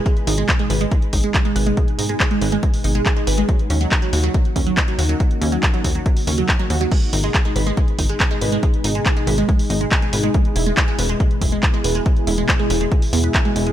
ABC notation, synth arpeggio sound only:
X:1
M:4/4
L:1/16
Q:1/4=140
K:G#m
V:1 name="Synth arpeggio sound" clef=bass
G, z D G, G G, B G, G, z D G, z G, B G, | G, z D G, G G, B G, G, z D G, G G, B G, | F, z C F, D F, F F, F, z C F, D F, F F, | F, z C F, D F, F F, F, z C F, D F, F F, |
G, z D G, G G, B G, G, z D G, G G, B G, | G, z D G, G G, B G, G, z D G, G G, B G, | G, z E G, G G, B G, G, z E G, G G, B G, | G, z E G, G G, B G, G, z B, B e G, G, G, |]